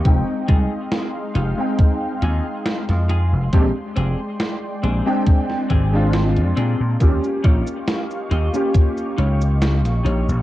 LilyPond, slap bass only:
\new Staff \with { instrumentName = "Slap bass" } { \clef bass \time 4/4 \key ees \mixolydian \tempo 4 = 69 f,,16 r16 c,16 r8. f,,16 r8. ees,16 r8 f,8 f,,16 | bes,,16 r16 f,,16 r8. bes,,16 r8. aes,,8. f,16 bes,16 bes,16 | ees,16 r16 bes,,16 r8. ees,16 r8. des,8. bes,,16 bes,,16 bes,,16 | }